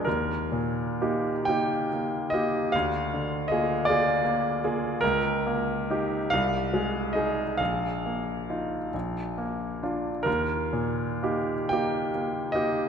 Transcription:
\new Staff \with { instrumentName = "Grand piano" } { \time 6/8 \key ees \major \tempo 4. = 46 << { bes'4. g''4 ees''8 | f''4 ees''8 d''4. | bes'4. f''4 ees''8 | f''2~ f''8 r8 |
bes'4. g''4 ees''8 | } \\ { ees,8 bes,8 <bes ees' g'>8 <bes ees' g'>8 bes8 <bes ees' g'>8 | d,8 d8 <bes f' aes'>8 <bes f' aes'>8 bes8 <bes f' aes'>8 | des,8 bes8 <ees' g'>8 c,8 aes8 <ees' aes'>8 | bes,,8 bes8 <ees' f'>8 bes,,8 bes8 <d' f'>8 |
ees,8 bes,8 <bes ees' g'>8 <bes ees' g'>8 bes8 <bes ees' g'>8 | } >> }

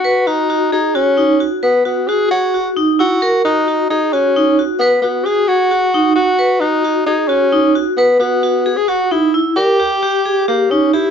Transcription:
<<
  \new Staff \with { instrumentName = "Vibraphone" } { \time 7/8 \key gis \minor \tempo 4 = 132 b'8 fis'8 fis'8 gis'8 fis'8 dis'8 fis'8 | b'8 fis'8 fis'8 gis'8 fis'8 dis'8 e'8 | ais'8 fis'8 fis'8 gis'8 fis'8 dis'8 fis'8 | b'8 fis'8 fis'8 gis'8 fis'8 dis'8 fis'8 |
b'8 fis'8 fis'8 gis'8 fis'8 dis'8 fis'8 | b'8 fis'8 fis'8 gis'8 fis'8 dis'8 e'8 | ais'8 g'8 g'8 gis'8 g'8 dis'8 g'8 | }
  \new Staff \with { instrumentName = "Tenor saxophone" } { \time 7/8 \key gis \minor fis'8 dis'4 dis'8 cis'4 r8 | b8 b8 gis'8 fis'4 r8 fis'8~ | fis'8 dis'4 dis'8 cis'4 r8 | b8 b8 gis'8 fis'4. fis'8~ |
fis'8 dis'4 dis'8 cis'4 r8 | b8 b4~ b16 gis'16 fis'8 e'8 r8 | g'2 ais8 cis'8 e'8 | }
>>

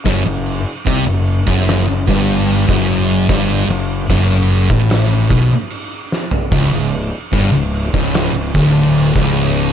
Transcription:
<<
  \new Staff \with { instrumentName = "Distorted electric guitar" } { \clef bass \time 4/4 \key a \major \tempo 4 = 74 fis,16 fis,8 r16 c16 fis,8 fis,8 fis,16 g,8. fis,8. | g,8 fis,8 fis,8. a,8. b,16 r4 r16 | cis,16 cis,8 r16 g,16 cis,8 cis,8 cis,16 d,8. cis,8. | }
  \new Staff \with { instrumentName = "Distorted electric guitar" } { \clef bass \time 4/4 \key a \major fis,16 fis,8 r16 c16 fis,8 fis,8 fis,16 g,8. fis,8. | g,8 fis,8 fis,8. a,8. b,16 r4 r16 | cis,16 cis,8 r16 g,16 cis,8 cis,8 cis,16 d,8. cis,8. | }
  \new Staff \with { instrumentName = "Fingered electric bass" } { \clef bass \time 4/4 \key a \major fis,,16 fis,,8 r16 c,16 fis,,8 fis,,8 fis,,16 g,,8. fis,,8. | g,,8 fis,,8 fis,,8. a,,8. b,,16 r4 r16 | cis,,16 cis,,8 r16 g,,16 cis,,8 cis,,8 cis,,16 d,,8. cis,,8. | }
  \new DrumStaff \with { instrumentName = "Drums" } \drummode { \time 4/4 <cymc bd>8 cymc8 <cymc bd>8 cymc16 bd16 <cymc sn>8 <cymc bd>8 cymc16 bd16 cymc8 | <cymc bd>8 cymc8 <cymc bd>8 cymc16 bd16 <cymc sn>8 <cymc bd>16 sn16 cymc8 sn16 tomfh16 | <cymc bd>8 cymc8 <cymc bd>8 cymc16 bd16 <cymc sn>8 <cymc bd>8 cymc16 bd16 cymc8 | }
>>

